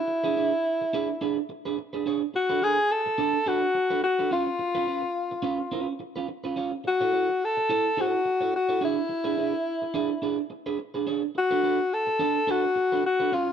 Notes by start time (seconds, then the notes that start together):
Already playing: E4
0.08 muted clean electric guitar stroke
0.24 D4 G#4 B4
0.37 D4 G#4 B4
0.53 muted clean electric guitar stroke
0.81 muted clean electric guitar stroke
0.93 D4 G#4 B4
1.09 muted clean electric guitar stroke
1.21 D4 G#4 B4
1.38 muted clean electric guitar stroke
1.49 muted clean electric guitar stroke
1.65 D4 G#4 B4
1.78 muted clean electric guitar stroke
1.93 D4 G#4 B4
2.06 D4 G#4 C#5
2.22 muted clean electric guitar stroke
2.34 F#4, muted clean electric guitar stroke
2.50 D4 A4 B4
2.62 G#4 A4 B4
2.78 muted clean electric guitar stroke
2.91 A4
3.06 muted clean electric guitar stroke
3.18 D4 A4 B4
3.34 muted clean electric guitar stroke
3.46 D4 F#4 A4 B4
3.62 muted clean electric guitar stroke
3.75 muted clean electric guitar stroke
3.90 D4 A4 B4
4.03 F#4, muted clean electric guitar stroke
4.19 D4 A4 B4
4.31 C#4 F4 C#5
4.47 muted clean electric guitar stroke
4.59 muted clean electric guitar stroke
4.75 C#4 F4 B4
4.87 C#4 F4 B4
5.03 muted clean electric guitar stroke
5.31 muted clean electric guitar stroke
5.42 C#4 F4 B4
5.59 muted clean electric guitar stroke
5.72 C#4 F4 B4
5.88 muted clean electric guitar stroke
6.00 muted clean electric guitar stroke
6.16 C#4 F4 B4
6.28 muted clean electric guitar stroke
6.44 C#4 F4 B4
6.56 C#4 F4 C#5
6.72 muted clean electric guitar stroke
6.84 F#4, muted clean electric guitar stroke
7.01 E4 A4 C#5
7.13 E4 A4 C#5
7.29 muted clean electric guitar stroke
7.44 A4
7.57 muted clean electric guitar stroke
7.69 E4 A4 C#5
7.85 muted clean electric guitar stroke
7.97 E4 F#4 A4 C#5
8.13 muted clean electric guitar stroke
8.25 muted clean electric guitar stroke
8.41 E4 A4 C#5
8.53 F#4, muted clean electric guitar stroke
8.69 E4 A4 C#5
8.81 D4 E4 G#4 C#5
8.97 muted clean electric guitar stroke
9.09 muted clean electric guitar stroke
9.24 D4 G#4 B4
9.37 D4 G#4 B4
9.54 muted clean electric guitar stroke
9.82 muted clean electric guitar stroke
9.94 D4 G#4 B4
10.10 muted clean electric guitar stroke
10.22 D4 G#4 B4
10.38 muted clean electric guitar stroke
10.50 muted clean electric guitar stroke
10.66 D4 G#4 B4
10.79 muted clean electric guitar stroke
10.94 D4 G#4 B4
11.07 D4 G#4 C#5
11.23 muted clean electric guitar stroke
11.35 F#4, muted clean electric guitar stroke
11.51 D4 A4 B4
11.63 D4 A4 B4
11.79 muted clean electric guitar stroke
11.94 A4
12.07 muted clean electric guitar stroke
12.19 D4 A4 B4
12.36 muted clean electric guitar stroke
12.47 D4 F#4 A4 B4
12.64 muted clean electric guitar stroke
12.76 muted clean electric guitar stroke
12.92 D4 A4 B4
13.04 F#4, muted clean electric guitar stroke
13.20 D4 A4 B4
13.32 C#4 F4 C#5
13.48 muted clean electric guitar stroke